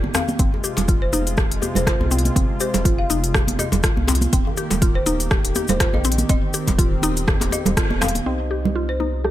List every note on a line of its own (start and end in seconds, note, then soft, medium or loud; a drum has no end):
0.00 0.11 G1 loud
0.00 0.35 D#3 medium
0.00 0.35 A#3 medium
0.00 0.35 G4 medium
0.00 0.13 D5 medium
0.00 high conga loud
0.14 0.22 C4 loud
0.14 0.45 F5 medium
0.14 cross-stick medium
0.14 djembe slap medium
0.14 djembe tone loud
0.14 cabasa medium
0.28 high conga loud
0.28 cabasa medium
0.39 0.48 F1 medium
0.39 4.29 C3 medium
0.39 4.29 G#3 medium
0.39 0.52 C4 loud
0.39 4.29 F4 medium
0.39 kick loud
0.39 closed hi-hat soft
0.39 cabasa soft
0.54 djembe tone medium
0.64 0.76 G4 medium
0.64 closed hi-hat soft
0.64 cabasa medium
0.77 1.07 F1 medium
0.77 closed hi-hat soft
0.77 djembe slap medium
0.77 low conga medium
0.77 cabasa medium
0.88 1.01 F4 medium
0.88 kick loud
0.88 closed hi-hat soft
0.88 cabasa soft
1.02 1.22 C5 medium
1.13 1.44 F1 medium
1.13 1.20 D#4 loud
1.13 closed hi-hat soft
1.13 high conga medium
1.13 cabasa medium
1.27 closed hi-hat soft
1.27 cabasa medium
1.37 1.45 G4 medium
1.37 kick loud
1.37 cross-stick medium
1.37 cabasa soft
1.51 1.59 F1 medium
1.51 closed hi-hat medium
1.62 1.74 G4 medium
1.62 closed hi-hat soft
1.62 djembe tone medium
1.62 high conga medium
1.62 cabasa medium
1.75 1.91 F1 medium
1.75 1.83 C5 medium
1.75 closed hi-hat soft
1.75 djembe tone medium
1.75 low conga medium
1.75 cabasa medium
1.87 2.00 F4 medium
1.87 1.96 C5 medium
1.87 kick loud
1.87 cross-stick medium
1.87 closed hi-hat medium
1.87 djembe slap loud
1.87 cabasa soft
2.00 2.30 C2 medium
2.00 djembe tone medium
2.00 high conga medium
2.11 2.19 C4 loud
2.11 closed hi-hat soft
2.11 cabasa medium
2.19 closed hi-hat soft
2.25 closed hi-hat soft
2.25 high conga medium
2.25 cabasa medium
2.36 2.45 F1 loud
2.36 2.48 C4 loud
2.36 kick loud
2.36 closed hi-hat medium
2.36 cabasa soft
2.60 2.73 G4 medium
2.60 2.96 C5 medium
2.60 closed hi-hat soft
2.60 cabasa medium
2.74 3.04 F1 medium
2.74 closed hi-hat soft
2.74 djembe slap medium
2.74 low conga medium
2.74 cabasa medium
2.85 2.98 F4 medium
2.85 kick loud
2.85 closed hi-hat medium
2.85 cabasa soft
2.98 3.19 F5 medium
3.10 3.41 F1 medium
3.10 3.17 D#4 loud
3.10 closed hi-hat soft
3.10 high conga medium
3.10 cabasa medium
3.24 closed hi-hat soft
3.24 cabasa soft
3.34 3.42 G4 medium
3.34 kick loud
3.34 cross-stick medium
3.34 high conga medium
3.34 djembe tone medium
3.34 cabasa soft
3.48 3.55 F1 medium
3.48 closed hi-hat medium
3.48 high conga loud
3.59 3.71 G4 medium
3.59 3.97 D#5 medium
3.59 closed hi-hat soft
3.59 djembe tone medium
3.59 high conga medium
3.59 cabasa medium
3.72 3.88 F1 loud
3.72 closed hi-hat soft
3.72 djembe tone medium
3.72 low conga medium
3.72 cabasa soft
3.83 3.97 F4 medium
3.83 kick loud
3.83 cross-stick medium
3.83 closed hi-hat medium
3.83 cabasa soft
3.97 4.27 C2 medium
3.97 high conga loud
4.08 4.15 C4 loud
4.08 closed hi-hat soft
4.08 djembe slap medium
4.08 djembe tone medium
4.08 cabasa medium
4.15 closed hi-hat medium
4.21 closed hi-hat soft
4.21 high conga loud
4.21 cabasa soft
4.33 4.42 D#1 loud
4.33 8.22 D#3 medium
4.33 6.27 A#3 medium
4.33 4.45 C4 loud
4.33 8.22 G4 medium
4.33 kick loud
4.33 closed hi-hat medium
4.33 cabasa soft
4.47 djembe tone medium
4.57 4.70 G4 medium
4.57 closed hi-hat soft
4.57 cabasa medium
4.71 5.01 D#1 medium
4.71 closed hi-hat soft
4.71 djembe slap medium
4.71 low conga medium
4.71 cabasa soft
4.82 4.95 F4 medium
4.82 kick loud
4.82 closed hi-hat medium
4.82 cabasa soft
4.95 5.16 C5 medium
5.06 5.37 D#1 medium
5.06 5.14 D#4 loud
5.06 closed hi-hat soft
5.06 high conga medium
5.06 cabasa medium
5.20 closed hi-hat soft
5.20 cabasa medium
5.31 5.38 G4 medium
5.31 kick loud
5.31 cross-stick medium
5.31 cabasa soft
5.45 5.52 D#1 medium
5.45 closed hi-hat medium
5.55 5.68 G4 medium
5.55 closed hi-hat soft
5.55 high conga medium
5.55 djembe tone medium
5.55 cabasa medium
5.68 5.84 D#1 medium
5.68 5.76 C5 medium
5.68 closed hi-hat soft
5.68 djembe tone medium
5.68 low conga medium
5.68 cabasa medium
5.80 5.93 F4 medium
5.80 5.89 C5 medium
5.80 kick loud
5.80 cross-stick medium
5.80 closed hi-hat medium
5.80 djembe slap loud
5.80 cabasa soft
5.93 6.23 A#1 loud
5.93 6.14 D#5 medium
5.93 high conga medium
5.93 djembe tone medium
6.04 6.12 C4 loud
6.04 closed hi-hat soft
6.04 cabasa medium
6.12 closed hi-hat medium
6.18 closed hi-hat soft
6.18 high conga loud
6.18 cabasa soft
6.29 6.38 D#1 loud
6.29 8.24 C4 medium
6.29 6.42 C4 loud
6.29 6.68 D#5 medium
6.29 kick loud
6.29 closed hi-hat medium
6.29 cabasa soft
6.54 6.66 G4 medium
6.54 closed hi-hat soft
6.54 cabasa medium
6.67 6.97 D#1 medium
6.67 kick medium
6.67 closed hi-hat soft
6.67 djembe slap medium
6.67 low conga medium
6.67 cabasa medium
6.78 6.92 F4 medium
6.78 kick loud
6.78 closed hi-hat medium
6.78 cabasa soft
7.02 7.34 D#1 medium
7.02 7.10 D#4 loud
7.02 closed hi-hat soft
7.02 high conga medium
7.02 cabasa medium
7.17 closed hi-hat soft
7.17 cabasa soft
7.28 7.35 G4 medium
7.28 kick loud
7.28 cross-stick medium
7.28 djembe tone medium
7.28 high conga medium
7.28 cabasa soft
7.41 7.49 D#1 medium
7.41 closed hi-hat medium
7.41 djembe slap medium
7.41 high conga loud
7.51 7.65 G4 medium
7.51 7.99 D#5 medium
7.51 closed hi-hat soft
7.51 high conga medium
7.51 djembe tone medium
7.51 cabasa loud
7.66 7.81 D#1 medium
7.66 closed hi-hat soft
7.66 djembe tone medium
7.66 low conga loud
7.66 cabasa soft
7.77 7.90 F4 medium
7.77 kick loud
7.77 cross-stick medium
7.77 closed hi-hat medium
7.77 cabasa soft
7.90 8.20 D#1 medium
7.90 high conga loud
8.01 8.09 C4 loud
8.01 8.26 F5 medium
8.01 cross-stick medium
8.01 closed hi-hat soft
8.01 djembe slap medium
8.01 djembe tone medium
8.01 low conga medium
8.01 cabasa medium
8.08 closed hi-hat medium
8.15 closed hi-hat soft
8.15 high conga loud
8.15 cabasa soft
8.26 9.31 C2 medium
8.26 9.31 C4 medium
8.26 8.39 C4 medium
8.26 9.31 D#4 medium
8.26 9.31 G4 medium
8.26 9.31 C5 medium
8.26 9.31 D#5 medium
8.51 8.63 G4 medium
8.51 open hi-hat medium
8.65 closed hi-hat soft
8.65 low conga medium
8.75 8.88 F4 medium
8.75 closed hi-hat soft
8.89 9.09 C5 medium
9.00 9.07 D#4 medium
9.00 high conga medium
9.14 closed hi-hat soft
9.24 9.31 G4 medium
9.24 cross-stick medium